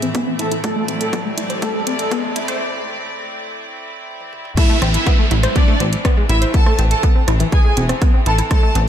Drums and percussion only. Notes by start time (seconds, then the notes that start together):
0.02 closed hi-hat
0.15 kick, closed hi-hat
0.39 closed hi-hat
0.52 closed hi-hat
0.64 kick, closed hi-hat
0.88 closed hi-hat
1.01 closed hi-hat
1.13 kick, closed hi-hat
1.38 closed hi-hat
1.50 closed hi-hat
1.62 kick, closed hi-hat
1.87 closed hi-hat
1.99 closed hi-hat
2.11 kick, closed hi-hat
2.36 closed hi-hat
2.48 closed hi-hat
4.20 high tom
4.33 mid tom
4.45 mid tom
4.57 kick, closed hi-hat, crash
4.82 cross-stick, closed hi-hat
4.94 closed hi-hat
5.07 kick, closed hi-hat
5.31 closed hi-hat
5.43 cross-stick, closed hi-hat
5.56 kick, closed hi-hat
5.80 closed hi-hat
5.93 closed hi-hat
6.05 kick, cross-stick, closed hi-hat
6.29 closed hi-hat
6.42 closed hi-hat
6.54 kick, closed hi-hat
6.66 cross-stick
6.79 closed hi-hat
6.91 closed hi-hat
7.03 kick, closed hi-hat
7.28 cross-stick, closed hi-hat
7.40 closed hi-hat
7.52 kick, closed hi-hat
7.77 closed hi-hat
7.89 cross-stick, closed hi-hat
8.02 kick, closed hi-hat
8.26 closed hi-hat
8.38 closed hi-hat
8.51 kick, cross-stick, closed hi-hat
8.75 closed hi-hat